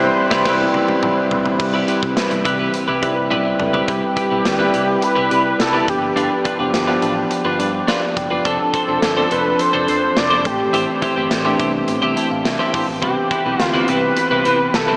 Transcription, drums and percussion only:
0.31 kick loud
0.31 snare loud
0.46 kick loud
0.46 snare loud
0.46 crash medium
0.74 high tom medium
0.88 high tom medium
1.03 mid tom medium
1.31 floor tom loud
1.46 floor tom medium
1.60 kick loud
1.60 crash medium
1.88 closed hi-hat medium
2.03 kick medium
2.17 snare loud
2.17 closed hi-hat medium
2.31 closed hi-hat soft
2.45 kick medium
2.45 closed hi-hat medium
2.74 closed hi-hat medium
3.03 kick medium
3.03 closed hi-hat medium
3.31 high tom medium
3.60 mid tom medium
3.74 floor tom medium
3.88 kick loud
3.88 closed hi-hat medium
4.17 kick medium
4.17 closed hi-hat medium
4.45 snare loud
4.45 closed hi-hat medium
4.74 closed hi-hat medium
5.02 closed hi-hat medium
5.31 closed hi-hat medium
5.60 snare loud
5.60 closed hi-hat medium
5.88 kick loud
5.88 closed hi-hat medium
6.17 closed hi-hat medium
6.45 kick medium
6.45 closed hi-hat medium
6.74 snare loud
6.74 closed hi-hat medium
7.02 closed hi-hat medium
7.31 closed hi-hat medium
7.60 closed hi-hat medium
7.88 snare loud
7.88 closed hi-hat medium
8.17 kick medium
8.17 closed hi-hat medium
8.45 kick loud
8.45 closed hi-hat medium
8.74 kick medium
8.74 closed hi-hat medium
9.02 snare loud
9.02 closed hi-hat medium
9.31 closed hi-hat medium
9.59 closed hi-hat medium
9.88 closed hi-hat medium
10.17 snare loud
10.17 closed hi-hat medium
10.45 kick loud
10.45 closed hi-hat medium
10.74 closed hi-hat medium
11.02 kick medium
11.02 closed hi-hat medium
11.31 snare medium
11.31 closed hi-hat medium
11.59 kick medium
11.59 closed hi-hat medium
11.88 closed hi-hat medium
12.17 closed hi-hat medium
12.45 snare loud
12.45 closed hi-hat medium
12.74 kick medium
12.74 open hi-hat medium
13.02 kick loud
13.02 closed hi-hat medium
13.31 kick medium
13.31 closed hi-hat medium
13.60 snare loud
13.60 closed hi-hat medium
13.88 closed hi-hat medium
14.17 closed hi-hat medium
14.45 closed hi-hat medium
14.74 snare loud
14.74 closed hi-hat medium

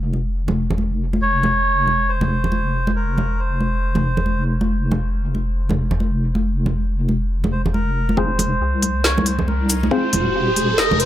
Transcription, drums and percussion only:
0.13 high conga medium
0.48 high conga medium
0.48 low conga medium
0.70 low conga medium
0.78 high conga medium
1.13 high conga medium
1.43 high conga medium
1.43 low conga medium
1.87 high conga medium
2.21 high conga medium
2.21 low conga medium
2.44 low conga medium
2.52 high conga medium
2.87 high conga medium
3.18 high conga medium
3.18 low conga medium
3.61 high conga soft
3.95 high conga medium
3.95 low conga medium
4.17 low conga medium
4.26 high conga medium
4.61 high conga medium
4.91 high conga medium
4.91 low conga medium
5.35 high conga medium
5.69 high conga medium
5.69 low conga medium
5.91 low conga medium
6.00 high conga medium
6.35 high conga medium
6.66 high conga medium
6.66 low conga medium
7.09 high conga medium
7.44 high conga medium
7.44 low conga medium
7.66 low conga medium
7.74 high conga medium
8.09 high conga medium
8.17 kick loud
8.39 closed hi-hat medium
8.39 high conga medium
8.39 low conga medium
8.82 closed hi-hat medium
8.82 high conga medium
9.04 snare loud
9.18 high conga medium
9.18 low conga medium
9.26 closed hi-hat medium
9.39 low conga medium
9.48 high conga medium
9.70 closed hi-hat medium
9.70 shaker medium
9.83 high conga medium
9.91 kick loud
10.13 closed hi-hat medium
10.13 high conga medium
10.13 low conga medium
10.56 closed hi-hat medium
10.56 high conga medium
10.78 snare loud
10.91 high conga medium
10.91 low conga loud
11.00 closed hi-hat medium

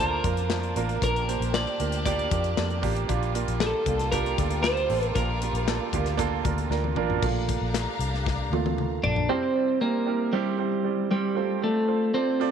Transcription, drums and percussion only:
0.24 kick medium
0.24 closed hi-hat medium
0.37 closed hi-hat soft
0.50 snare medium
0.50 clap medium
0.63 closed hi-hat soft
0.76 closed hi-hat medium
0.89 closed hi-hat soft
1.02 kick medium
1.02 closed hi-hat medium
1.16 closed hi-hat soft
1.29 closed hi-hat medium
1.42 closed hi-hat medium
1.54 snare loud
1.54 clap medium
1.67 closed hi-hat soft
1.80 closed hi-hat medium
1.92 closed hi-hat medium
2.06 kick medium
2.06 closed hi-hat medium
2.19 closed hi-hat soft
2.31 kick loud
2.31 closed hi-hat medium
2.44 closed hi-hat soft
2.57 snare loud
2.57 clap medium
2.70 closed hi-hat soft
2.83 kick medium
2.83 open hi-hat medium
2.96 closed hi-hat soft
3.09 kick medium
3.09 closed hi-hat medium
3.23 closed hi-hat soft
3.35 closed hi-hat medium
3.48 closed hi-hat medium
3.60 snare loud
3.60 clap medium
3.86 kick medium
3.86 closed hi-hat medium
4.00 snare soft
4.00 closed hi-hat medium
4.12 kick medium
4.12 closed hi-hat medium
4.26 closed hi-hat soft
4.38 kick medium
4.38 closed hi-hat medium
4.51 closed hi-hat soft
4.64 snare loud
4.64 clap medium
4.77 closed hi-hat soft
4.90 open hi-hat medium
5.03 closed hi-hat soft
5.16 kick medium
5.16 closed hi-hat medium
5.42 closed hi-hat medium
5.55 closed hi-hat soft
5.68 snare loud
5.68 clap medium
5.93 kick medium
5.93 closed hi-hat medium
6.06 snare soft
6.06 closed hi-hat soft
6.19 kick medium
6.19 closed hi-hat medium
6.45 kick loud
6.45 closed hi-hat medium
6.58 closed hi-hat soft
6.71 snare soft
6.84 high tom soft
6.96 mid tom medium
7.10 floor tom medium
7.23 kick loud
7.23 crash medium
7.49 kick medium
7.49 closed hi-hat medium
7.74 snare loud
7.74 clap medium
7.74 closed hi-hat medium
8.01 closed hi-hat medium
8.14 snare soft
8.26 kick medium
8.26 snare medium
8.53 high tom medium
8.66 high tom medium
8.78 mid tom medium
9.04 floor tom medium
9.16 floor tom medium

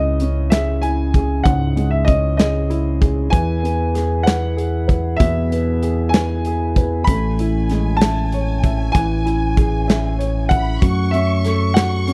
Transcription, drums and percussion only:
0.20 closed hi-hat soft
0.52 snare loud
0.52 closed hi-hat medium
0.83 closed hi-hat soft
1.14 kick medium
1.14 closed hi-hat soft
1.46 kick medium
1.46 closed hi-hat medium
1.77 closed hi-hat medium
2.08 kick medium
2.08 closed hi-hat soft
2.39 snare loud
2.39 closed hi-hat medium
2.71 closed hi-hat soft
3.02 kick medium
3.02 closed hi-hat soft
3.33 kick loud
3.33 closed hi-hat medium
3.65 closed hi-hat soft
3.95 snare soft
3.95 closed hi-hat soft
4.27 snare loud
4.27 closed hi-hat medium
4.58 closed hi-hat soft
4.89 kick medium
4.89 closed hi-hat soft
5.20 kick medium
5.20 closed hi-hat medium
5.52 closed hi-hat medium
5.83 closed hi-hat soft
6.14 snare loud
6.14 closed hi-hat medium
6.45 closed hi-hat soft
6.76 kick medium
6.76 closed hi-hat soft
7.07 kick loud
7.07 closed hi-hat medium
7.39 closed hi-hat medium
7.69 snare soft
7.69 closed hi-hat soft
8.01 snare loud
8.01 closed hi-hat medium
8.32 closed hi-hat soft
8.64 kick medium
8.64 closed hi-hat soft
8.95 kick loud
8.95 closed hi-hat medium
9.27 closed hi-hat medium
9.57 kick medium
9.57 closed hi-hat soft
9.90 snare loud
9.90 closed hi-hat medium
10.21 closed hi-hat soft
10.51 kick medium
10.51 closed hi-hat soft
10.82 kick loud
10.82 closed hi-hat medium
11.14 closed hi-hat soft
11.45 snare soft
11.45 closed hi-hat soft
11.76 snare loud
11.76 closed hi-hat medium
12.08 closed hi-hat soft

